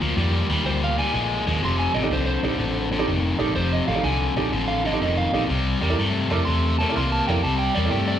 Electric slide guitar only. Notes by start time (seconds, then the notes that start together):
0.66 C5
0.84 F5
0.99 G#5
1.65 C6
1.79 G#5
1.94 D#5
2.13 C5
2.26 C5
3.56 C5
3.73 D#5
3.88 F5
4.04 G#5
4.68 F5
4.86 D#5
5.03 D#5
5.17 F5
6.45 C6
6.79 A5
6.97 C6
7.12 A5
7.27 G5
7.43 A5
7.58 G5
7.75 D5
7.91 G5
8.08 D5